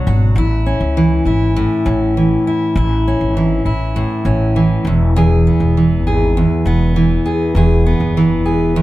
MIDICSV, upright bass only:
0, 0, Header, 1, 2, 480
1, 0, Start_track
1, 0, Key_signature, 3, "major"
1, 0, Tempo, 599401
1, 292, Time_signature, 4, 2, 24, 8
1, 7065, End_track
2, 0, Start_track
2, 0, Title_t, "Upright bass"
2, 0, Program_c, 0, 32
2, 55, Note_on_c, 0, 32, 95
2, 250, Note_off_c, 0, 32, 0
2, 285, Note_on_c, 0, 33, 107
2, 583, Note_off_c, 0, 33, 0
2, 645, Note_on_c, 0, 37, 92
2, 943, Note_off_c, 0, 37, 0
2, 1004, Note_on_c, 0, 32, 84
2, 1302, Note_off_c, 0, 32, 0
2, 1488, Note_on_c, 0, 33, 103
2, 1882, Note_off_c, 0, 33, 0
2, 2207, Note_on_c, 0, 33, 107
2, 2504, Note_off_c, 0, 33, 0
2, 2569, Note_on_c, 0, 32, 86
2, 2865, Note_off_c, 0, 32, 0
2, 2925, Note_on_c, 0, 33, 83
2, 3223, Note_off_c, 0, 33, 0
2, 3404, Note_on_c, 0, 33, 102
2, 3800, Note_off_c, 0, 33, 0
2, 3881, Note_on_c, 0, 28, 96
2, 4377, Note_off_c, 0, 28, 0
2, 4486, Note_on_c, 0, 28, 83
2, 4845, Note_off_c, 0, 28, 0
2, 4845, Note_on_c, 0, 32, 85
2, 5142, Note_off_c, 0, 32, 0
2, 5330, Note_on_c, 0, 28, 99
2, 5724, Note_off_c, 0, 28, 0
2, 6044, Note_on_c, 0, 28, 100
2, 6342, Note_off_c, 0, 28, 0
2, 6408, Note_on_c, 0, 30, 89
2, 6769, Note_off_c, 0, 30, 0
2, 6769, Note_on_c, 0, 28, 89
2, 7065, Note_off_c, 0, 28, 0
2, 7065, End_track
0, 0, End_of_file